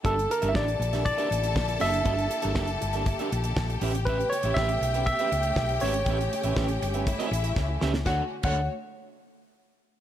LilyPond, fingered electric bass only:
\new Staff \with { instrumentName = "Fingered electric bass" } { \clef bass \time 4/4 \key g \lydian \tempo 4 = 120 g,,8 r16 g,,16 a,,8 bes,,8. r16 a,,8 bes,,8 fis,,8 | g,,8 r16 g,,16 fis,,8 g,,8. r16 bes,,8 bes,,8 a,,8~ | a,,8 r16 a,,16 a,,8 b,,8. r16 cis,8 b,,8 gis,,8 | a,,8 r16 a,,16 a,,8 g,,8. r16 a,,8 cis,8 cis,8 |
d,16 r8 d,8 r2 r8. | }